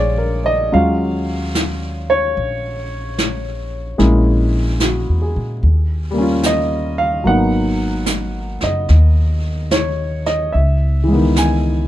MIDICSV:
0, 0, Header, 1, 4, 480
1, 0, Start_track
1, 0, Key_signature, -6, "minor"
1, 0, Tempo, 818554
1, 422, Time_signature, 4, 2, 24, 8
1, 6965, End_track
2, 0, Start_track
2, 0, Title_t, "Grand piano"
2, 0, Program_c, 0, 0
2, 0, Control_c, 0, 64, 127
2, 0, Note_on_c, 0, 56, 51
2, 0, Note_on_c, 0, 58, 46
2, 0, Note_on_c, 0, 62, 44
2, 0, Note_on_c, 0, 65, 59
2, 0, Note_on_c, 0, 68, 42
2, 0, Note_on_c, 0, 73, 54
2, 0, Note_on_c, 0, 74, 75
2, 106, Note_on_c, 0, 70, 44
2, 238, Note_off_c, 0, 74, 0
2, 239, Note_off_c, 0, 68, 0
2, 260, Note_on_c, 0, 74, 45
2, 269, Note_on_c, 0, 75, 86
2, 354, Note_off_c, 0, 70, 0
2, 413, Note_off_c, 0, 56, 0
2, 417, Note_off_c, 0, 65, 0
2, 418, Note_off_c, 0, 58, 0
2, 423, Note_on_c, 0, 61, 42
2, 424, Note_on_c, 0, 54, 50
2, 425, Note_off_c, 0, 62, 0
2, 425, Note_on_c, 0, 65, 50
2, 426, Note_on_c, 0, 56, 44
2, 431, Note_off_c, 0, 75, 0
2, 431, Control_c, 0, 64, 0
2, 432, Note_on_c, 0, 77, 80
2, 435, Note_off_c, 0, 73, 0
2, 511, Note_off_c, 0, 74, 0
2, 532, Control_c, 0, 64, 127
2, 885, Note_off_c, 0, 77, 0
2, 1230, Note_on_c, 0, 73, 86
2, 2163, Note_off_c, 0, 73, 0
2, 2327, Note_off_c, 0, 56, 0
2, 2330, Note_off_c, 0, 61, 0
2, 2334, Note_on_c, 0, 58, 51
2, 2336, Note_on_c, 0, 56, 59
2, 2339, Note_on_c, 0, 61, 46
2, 2339, Note_on_c, 0, 64, 63
2, 2343, Note_off_c, 0, 54, 0
2, 2343, Note_off_c, 0, 65, 0
2, 2350, Control_c, 0, 64, 0
2, 2457, Control_c, 0, 64, 127
2, 2827, Note_on_c, 0, 66, 39
2, 3058, Note_on_c, 0, 68, 42
2, 3199, Note_off_c, 0, 66, 0
2, 3294, Note_off_c, 0, 56, 0
2, 3294, Note_off_c, 0, 58, 0
2, 3296, Note_off_c, 0, 61, 0
2, 3296, Note_off_c, 0, 64, 0
2, 3306, Control_c, 0, 64, 0
2, 3394, Note_off_c, 0, 68, 0
2, 3420, Control_c, 0, 64, 127
2, 3581, Note_on_c, 0, 55, 55
2, 3599, Note_on_c, 0, 58, 47
2, 3625, Note_on_c, 0, 61, 49
2, 3644, Note_on_c, 0, 65, 59
2, 3790, Note_on_c, 0, 75, 80
2, 4095, Note_on_c, 0, 77, 75
2, 4112, Note_off_c, 0, 75, 0
2, 4236, Note_off_c, 0, 55, 0
2, 4245, Note_off_c, 0, 58, 0
2, 4245, Note_on_c, 0, 54, 51
2, 4257, Note_on_c, 0, 58, 46
2, 4258, Note_off_c, 0, 61, 0
2, 4259, Note_off_c, 0, 77, 0
2, 4264, Control_c, 0, 64, 0
2, 4264, Note_on_c, 0, 78, 80
2, 4267, Note_off_c, 0, 65, 0
2, 4267, Note_on_c, 0, 59, 43
2, 4274, Note_on_c, 0, 63, 51
2, 4375, Control_c, 0, 64, 127
2, 4716, Note_off_c, 0, 78, 0
2, 5064, Note_on_c, 0, 75, 66
2, 5676, Note_off_c, 0, 75, 0
2, 5697, Note_on_c, 0, 73, 65
2, 6019, Note_on_c, 0, 75, 74
2, 6027, Note_off_c, 0, 73, 0
2, 6172, Note_off_c, 0, 54, 0
2, 6172, Note_on_c, 0, 76, 68
2, 6178, Note_off_c, 0, 58, 0
2, 6183, Note_off_c, 0, 59, 0
2, 6183, Note_off_c, 0, 75, 0
2, 6185, Control_c, 0, 64, 0
2, 6186, Note_off_c, 0, 63, 0
2, 6299, Control_c, 0, 64, 127
2, 6471, Note_on_c, 0, 52, 45
2, 6495, Note_on_c, 0, 56, 42
2, 6521, Note_on_c, 0, 59, 45
2, 6536, Note_on_c, 0, 51, 58
2, 6633, Note_off_c, 0, 76, 0
2, 6673, Note_on_c, 0, 80, 76
2, 6965, Note_off_c, 0, 51, 0
2, 6965, Note_off_c, 0, 52, 0
2, 6965, Note_off_c, 0, 56, 0
2, 6965, Note_off_c, 0, 59, 0
2, 6965, Note_off_c, 0, 80, 0
2, 6965, End_track
3, 0, Start_track
3, 0, Title_t, "Upright bass"
3, 0, Program_c, 1, 32
3, 0, Note_on_c, 1, 34, 77
3, 400, Note_off_c, 1, 34, 0
3, 431, Note_on_c, 1, 39, 59
3, 1364, Note_off_c, 1, 39, 0
3, 1390, Note_on_c, 1, 34, 67
3, 2321, Note_off_c, 1, 34, 0
3, 2342, Note_on_c, 1, 34, 70
3, 2955, Note_off_c, 1, 34, 0
3, 2985, Note_on_c, 1, 40, 44
3, 3130, Note_off_c, 1, 40, 0
3, 3144, Note_on_c, 1, 46, 65
3, 3290, Note_off_c, 1, 46, 0
3, 3301, Note_on_c, 1, 39, 71
3, 4233, Note_off_c, 1, 39, 0
3, 4253, Note_on_c, 1, 32, 60
3, 5033, Note_off_c, 1, 32, 0
3, 5059, Note_on_c, 1, 30, 64
3, 5205, Note_off_c, 1, 30, 0
3, 5215, Note_on_c, 1, 39, 79
3, 6153, Note_off_c, 1, 39, 0
3, 6182, Note_on_c, 1, 37, 60
3, 6965, Note_off_c, 1, 37, 0
3, 6965, End_track
4, 0, Start_track
4, 0, Title_t, "Drums"
4, 427, Note_on_c, 9, 25, 36
4, 909, Note_on_c, 9, 38, 42
4, 909, Note_on_c, 9, 44, 48
4, 967, Note_off_c, 9, 38, 0
4, 967, Note_off_c, 9, 44, 0
4, 1389, Note_off_c, 9, 25, 0
4, 1389, Note_on_c, 9, 25, 34
4, 1867, Note_on_c, 9, 38, 41
4, 1867, Note_on_c, 9, 44, 47
4, 1926, Note_off_c, 9, 38, 0
4, 1926, Note_off_c, 9, 44, 0
4, 2341, Note_off_c, 9, 25, 0
4, 2341, Note_on_c, 9, 25, 36
4, 2341, Note_on_c, 9, 38, 30
4, 2400, Note_off_c, 9, 38, 0
4, 2815, Note_on_c, 9, 38, 47
4, 2815, Note_on_c, 9, 44, 47
4, 2873, Note_off_c, 9, 38, 0
4, 2873, Note_off_c, 9, 44, 0
4, 3289, Note_off_c, 9, 25, 0
4, 3289, Note_on_c, 9, 25, 35
4, 3772, Note_on_c, 9, 38, 39
4, 3772, Note_on_c, 9, 44, 52
4, 3831, Note_off_c, 9, 38, 0
4, 3831, Note_off_c, 9, 44, 0
4, 4247, Note_off_c, 9, 25, 0
4, 4247, Note_on_c, 9, 25, 40
4, 4727, Note_on_c, 9, 38, 42
4, 4727, Note_on_c, 9, 44, 63
4, 4785, Note_off_c, 9, 38, 0
4, 4785, Note_off_c, 9, 44, 0
4, 5046, Note_on_c, 9, 38, 28
4, 5105, Note_off_c, 9, 38, 0
4, 5210, Note_off_c, 9, 25, 0
4, 5210, Note_on_c, 9, 25, 34
4, 5210, Note_on_c, 9, 38, 25
4, 5269, Note_off_c, 9, 38, 0
4, 5694, Note_on_c, 9, 38, 41
4, 5694, Note_on_c, 9, 44, 39
4, 5753, Note_off_c, 9, 38, 0
4, 5753, Note_off_c, 9, 44, 0
4, 6016, Note_on_c, 9, 38, 24
4, 6075, Note_off_c, 9, 38, 0
4, 6176, Note_off_c, 9, 25, 0
4, 6176, Note_on_c, 9, 25, 29
4, 6663, Note_on_c, 9, 38, 44
4, 6663, Note_on_c, 9, 44, 49
4, 6722, Note_off_c, 9, 38, 0
4, 6722, Note_off_c, 9, 44, 0
4, 6965, Note_off_c, 9, 25, 0
4, 6965, End_track
0, 0, End_of_file